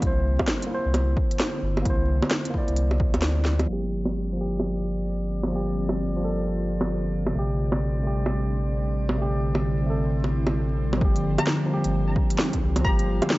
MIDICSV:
0, 0, Header, 1, 7, 480
1, 0, Start_track
1, 0, Tempo, 458015
1, 20, Time_signature, 4, 2, 24, 8
1, 14022, End_track
2, 0, Start_track
2, 0, Title_t, "Synth pluck"
2, 0, Program_c, 0, 84
2, 11935, Note_on_c, 0, 82, 86
2, 12414, Note_off_c, 0, 82, 0
2, 13464, Note_on_c, 0, 82, 91
2, 14022, Note_off_c, 0, 82, 0
2, 14022, End_track
3, 0, Start_track
3, 0, Title_t, "Synth texture"
3, 0, Program_c, 1, 99
3, 3855, Note_on_c, 1, 74, 72
3, 11549, Note_off_c, 1, 74, 0
3, 14022, End_track
4, 0, Start_track
4, 0, Title_t, "Ambient pad"
4, 0, Program_c, 2, 92
4, 0, Note_on_c, 2, 50, 82
4, 0, Note_on_c, 2, 55, 75
4, 0, Note_on_c, 2, 60, 90
4, 0, Note_on_c, 2, 64, 65
4, 3860, Note_off_c, 2, 64, 0
4, 3861, Note_off_c, 2, 50, 0
4, 3862, Note_off_c, 2, 60, 0
4, 3863, Note_off_c, 2, 55, 0
4, 4063, Note_on_c, 2, 55, 67
4, 4293, Note_on_c, 2, 50, 86
4, 4570, Note_on_c, 2, 60, 82
4, 5599, Note_on_c, 2, 65, 83
4, 7699, Note_off_c, 2, 65, 0
4, 8952, Note_on_c, 2, 64, 69
4, 11540, Note_off_c, 2, 64, 0
4, 12677, Note_on_c, 2, 65, 78
4, 14022, Note_off_c, 2, 50, 0
4, 14022, Note_off_c, 2, 55, 0
4, 14022, Note_off_c, 2, 60, 0
4, 14022, Note_off_c, 2, 65, 0
4, 14022, End_track
5, 0, Start_track
5, 0, Title_t, "Tine electric piano"
5, 0, Program_c, 3, 4
5, 0, Control_c, 3, 64, 127
5, 0, Note_on_c, 3, 58, 90
5, 28, Note_on_c, 3, 64, 86
5, 34, Control_c, 3, 64, 0
5, 72, Note_on_c, 3, 72, 103
5, 184, Control_c, 3, 64, 127
5, 684, Note_off_c, 3, 58, 0
5, 696, Note_on_c, 3, 58, 88
5, 723, Note_off_c, 3, 64, 0
5, 739, Note_on_c, 3, 64, 77
5, 745, Note_off_c, 3, 72, 0
5, 781, Note_on_c, 3, 72, 93
5, 1897, Note_off_c, 3, 58, 0
5, 1908, Note_on_c, 3, 58, 89
5, 1918, Note_off_c, 3, 64, 0
5, 1939, Note_off_c, 3, 72, 0
5, 1947, Note_on_c, 3, 64, 83
5, 1990, Note_on_c, 3, 72, 94
5, 2609, Note_off_c, 3, 58, 0
5, 2622, Note_on_c, 3, 58, 89
5, 2642, Note_off_c, 3, 64, 0
5, 2661, Note_on_c, 3, 64, 81
5, 2664, Note_off_c, 3, 72, 0
5, 2705, Note_on_c, 3, 74, 100
5, 3820, Note_off_c, 3, 58, 0
5, 3822, Note_on_c, 3, 53, 80
5, 3839, Note_off_c, 3, 64, 0
5, 3862, Note_off_c, 3, 74, 0
5, 3862, Note_on_c, 3, 58, 70
5, 3875, Control_c, 3, 64, 0
5, 3905, Note_on_c, 3, 67, 85
5, 4025, Control_c, 3, 64, 127
5, 4524, Note_off_c, 3, 53, 0
5, 4536, Note_on_c, 3, 53, 77
5, 4560, Note_off_c, 3, 58, 0
5, 4577, Note_on_c, 3, 58, 72
5, 4581, Note_off_c, 3, 67, 0
5, 4619, Note_on_c, 3, 67, 84
5, 5728, Note_off_c, 3, 53, 0
5, 5741, Note_on_c, 3, 53, 79
5, 5758, Note_off_c, 3, 58, 0
5, 5779, Note_off_c, 3, 67, 0
5, 5781, Note_on_c, 3, 58, 71
5, 5821, Note_on_c, 3, 67, 87
5, 6447, Note_off_c, 3, 53, 0
5, 6460, Note_on_c, 3, 53, 79
5, 6480, Note_off_c, 3, 58, 0
5, 6499, Note_off_c, 3, 67, 0
5, 6501, Note_on_c, 3, 58, 73
5, 6543, Note_on_c, 3, 69, 85
5, 7656, Note_on_c, 3, 48, 83
5, 7659, Note_off_c, 3, 53, 0
5, 7679, Note_off_c, 3, 58, 0
5, 7700, Note_off_c, 3, 69, 0
5, 7703, Note_on_c, 3, 57, 78
5, 7715, Control_c, 3, 64, 0
5, 7742, Note_on_c, 3, 67, 90
5, 7888, Control_c, 3, 64, 127
5, 8364, Note_off_c, 3, 48, 0
5, 8376, Note_on_c, 3, 48, 76
5, 8400, Note_off_c, 3, 57, 0
5, 8416, Note_on_c, 3, 57, 73
5, 8420, Note_off_c, 3, 67, 0
5, 8458, Note_on_c, 3, 67, 86
5, 9563, Note_off_c, 3, 48, 0
5, 9576, Note_on_c, 3, 48, 82
5, 9597, Note_off_c, 3, 57, 0
5, 9618, Note_off_c, 3, 67, 0
5, 9618, Note_on_c, 3, 57, 74
5, 9659, Note_on_c, 3, 67, 90
5, 10280, Note_off_c, 3, 48, 0
5, 10292, Note_on_c, 3, 48, 81
5, 10318, Note_off_c, 3, 57, 0
5, 10335, Note_on_c, 3, 57, 77
5, 10339, Note_off_c, 3, 67, 0
5, 10374, Note_on_c, 3, 69, 91
5, 11495, Note_off_c, 3, 48, 0
5, 11497, Note_on_c, 3, 53, 89
5, 11516, Note_off_c, 3, 57, 0
5, 11536, Note_off_c, 3, 69, 0
5, 11540, Note_on_c, 3, 58, 82
5, 11554, Control_c, 3, 64, 0
5, 11580, Note_on_c, 3, 67, 102
5, 11743, Control_c, 3, 64, 127
5, 12204, Note_off_c, 3, 53, 0
5, 12217, Note_on_c, 3, 53, 90
5, 12239, Note_off_c, 3, 58, 0
5, 12259, Note_off_c, 3, 67, 0
5, 12261, Note_on_c, 3, 58, 82
5, 12300, Note_on_c, 3, 67, 99
5, 13410, Note_off_c, 3, 53, 0
5, 13423, Note_on_c, 3, 53, 90
5, 13439, Note_off_c, 3, 58, 0
5, 13459, Note_off_c, 3, 67, 0
5, 13462, Note_on_c, 3, 58, 82
5, 13504, Note_on_c, 3, 67, 101
5, 14022, Note_off_c, 3, 53, 0
5, 14022, Note_off_c, 3, 58, 0
5, 14022, Note_off_c, 3, 67, 0
5, 14022, End_track
6, 0, Start_track
6, 0, Title_t, "Sub bass"
6, 0, Program_c, 4, 38
6, 25, Note_on_c, 4, 36, 98
6, 395, Note_off_c, 4, 36, 0
6, 895, Note_on_c, 4, 36, 88
6, 1210, Note_off_c, 4, 36, 0
6, 1699, Note_on_c, 4, 31, 95
6, 1925, Note_off_c, 4, 31, 0
6, 1944, Note_on_c, 4, 36, 95
6, 2315, Note_off_c, 4, 36, 0
6, 2818, Note_on_c, 4, 36, 92
6, 3146, Note_on_c, 4, 34, 93
6, 3161, Note_off_c, 4, 36, 0
6, 3283, Note_off_c, 4, 34, 0
6, 3297, Note_on_c, 4, 38, 76
6, 3851, Note_off_c, 4, 38, 0
6, 3864, Note_on_c, 4, 31, 77
6, 7684, Note_off_c, 4, 31, 0
6, 7700, Note_on_c, 4, 33, 85
6, 11523, Note_off_c, 4, 33, 0
6, 11545, Note_on_c, 4, 31, 95
6, 11915, Note_off_c, 4, 31, 0
6, 12415, Note_on_c, 4, 31, 98
6, 12730, Note_off_c, 4, 31, 0
6, 13223, Note_on_c, 4, 36, 90
6, 13447, Note_off_c, 4, 36, 0
6, 13463, Note_on_c, 4, 31, 100
6, 13834, Note_off_c, 4, 31, 0
6, 14022, End_track
7, 0, Start_track
7, 0, Title_t, "Drums"
7, 22, Note_on_c, 9, 36, 111
7, 22, Note_on_c, 9, 42, 50
7, 127, Note_off_c, 9, 36, 0
7, 127, Note_off_c, 9, 42, 0
7, 413, Note_on_c, 9, 61, 64
7, 415, Note_on_c, 9, 36, 58
7, 500, Note_on_c, 9, 38, 100
7, 500, Note_on_c, 9, 42, 55
7, 518, Note_off_c, 9, 61, 0
7, 520, Note_off_c, 9, 36, 0
7, 605, Note_off_c, 9, 38, 0
7, 605, Note_off_c, 9, 42, 0
7, 655, Note_on_c, 9, 42, 56
7, 760, Note_off_c, 9, 42, 0
7, 985, Note_on_c, 9, 42, 50
7, 985, Note_on_c, 9, 61, 56
7, 1090, Note_off_c, 9, 42, 0
7, 1090, Note_off_c, 9, 61, 0
7, 1223, Note_on_c, 9, 36, 96
7, 1328, Note_off_c, 9, 36, 0
7, 1374, Note_on_c, 9, 42, 52
7, 1463, Note_off_c, 9, 42, 0
7, 1463, Note_on_c, 9, 38, 96
7, 1463, Note_on_c, 9, 42, 54
7, 1568, Note_off_c, 9, 38, 0
7, 1568, Note_off_c, 9, 42, 0
7, 1856, Note_on_c, 9, 61, 53
7, 1943, Note_on_c, 9, 36, 109
7, 1944, Note_on_c, 9, 42, 52
7, 1961, Note_off_c, 9, 61, 0
7, 2048, Note_off_c, 9, 36, 0
7, 2049, Note_off_c, 9, 42, 0
7, 2332, Note_on_c, 9, 61, 63
7, 2419, Note_on_c, 9, 38, 101
7, 2419, Note_on_c, 9, 42, 58
7, 2437, Note_off_c, 9, 61, 0
7, 2524, Note_off_c, 9, 38, 0
7, 2524, Note_off_c, 9, 42, 0
7, 2571, Note_on_c, 9, 42, 58
7, 2662, Note_on_c, 9, 36, 57
7, 2676, Note_off_c, 9, 42, 0
7, 2767, Note_off_c, 9, 36, 0
7, 2809, Note_on_c, 9, 42, 30
7, 2897, Note_off_c, 9, 42, 0
7, 2897, Note_on_c, 9, 42, 54
7, 3001, Note_off_c, 9, 42, 0
7, 3050, Note_on_c, 9, 61, 38
7, 3142, Note_on_c, 9, 36, 99
7, 3154, Note_off_c, 9, 61, 0
7, 3247, Note_off_c, 9, 36, 0
7, 3289, Note_on_c, 9, 42, 57
7, 3289, Note_on_c, 9, 61, 66
7, 3374, Note_off_c, 9, 42, 0
7, 3374, Note_on_c, 9, 38, 100
7, 3374, Note_on_c, 9, 42, 58
7, 3394, Note_off_c, 9, 61, 0
7, 3478, Note_off_c, 9, 38, 0
7, 3478, Note_off_c, 9, 42, 0
7, 3615, Note_on_c, 9, 38, 54
7, 3720, Note_off_c, 9, 38, 0
7, 3767, Note_on_c, 9, 42, 34
7, 3767, Note_on_c, 9, 61, 54
7, 3872, Note_off_c, 9, 42, 0
7, 3872, Note_off_c, 9, 61, 0
7, 4250, Note_on_c, 9, 61, 60
7, 4354, Note_off_c, 9, 61, 0
7, 4816, Note_on_c, 9, 61, 53
7, 4921, Note_off_c, 9, 61, 0
7, 5695, Note_on_c, 9, 61, 49
7, 5800, Note_off_c, 9, 61, 0
7, 6174, Note_on_c, 9, 61, 56
7, 6279, Note_off_c, 9, 61, 0
7, 7134, Note_on_c, 9, 61, 57
7, 7239, Note_off_c, 9, 61, 0
7, 7614, Note_on_c, 9, 61, 50
7, 7718, Note_off_c, 9, 61, 0
7, 8091, Note_on_c, 9, 61, 58
7, 8196, Note_off_c, 9, 61, 0
7, 8656, Note_on_c, 9, 61, 51
7, 8761, Note_off_c, 9, 61, 0
7, 9527, Note_on_c, 9, 61, 51
7, 9632, Note_off_c, 9, 61, 0
7, 10008, Note_on_c, 9, 61, 54
7, 10113, Note_off_c, 9, 61, 0
7, 10732, Note_on_c, 9, 61, 32
7, 10837, Note_off_c, 9, 61, 0
7, 10968, Note_on_c, 9, 61, 57
7, 11073, Note_off_c, 9, 61, 0
7, 11454, Note_on_c, 9, 61, 49
7, 11541, Note_on_c, 9, 36, 114
7, 11559, Note_off_c, 9, 61, 0
7, 11646, Note_off_c, 9, 36, 0
7, 11693, Note_on_c, 9, 42, 31
7, 11798, Note_off_c, 9, 42, 0
7, 11930, Note_on_c, 9, 42, 58
7, 11930, Note_on_c, 9, 61, 67
7, 12020, Note_on_c, 9, 38, 106
7, 12035, Note_off_c, 9, 42, 0
7, 12035, Note_off_c, 9, 61, 0
7, 12125, Note_off_c, 9, 38, 0
7, 12411, Note_on_c, 9, 42, 58
7, 12516, Note_off_c, 9, 42, 0
7, 12742, Note_on_c, 9, 36, 98
7, 12847, Note_off_c, 9, 36, 0
7, 12893, Note_on_c, 9, 42, 58
7, 12980, Note_on_c, 9, 38, 109
7, 12998, Note_off_c, 9, 42, 0
7, 13085, Note_off_c, 9, 38, 0
7, 13134, Note_on_c, 9, 36, 61
7, 13134, Note_on_c, 9, 42, 47
7, 13238, Note_off_c, 9, 42, 0
7, 13239, Note_off_c, 9, 36, 0
7, 13372, Note_on_c, 9, 42, 62
7, 13372, Note_on_c, 9, 61, 58
7, 13461, Note_on_c, 9, 36, 125
7, 13477, Note_off_c, 9, 42, 0
7, 13477, Note_off_c, 9, 61, 0
7, 13566, Note_off_c, 9, 36, 0
7, 13615, Note_on_c, 9, 42, 33
7, 13720, Note_off_c, 9, 42, 0
7, 13855, Note_on_c, 9, 42, 57
7, 13855, Note_on_c, 9, 61, 64
7, 13941, Note_on_c, 9, 38, 110
7, 13959, Note_off_c, 9, 42, 0
7, 13959, Note_off_c, 9, 61, 0
7, 14022, Note_off_c, 9, 38, 0
7, 14022, End_track
0, 0, End_of_file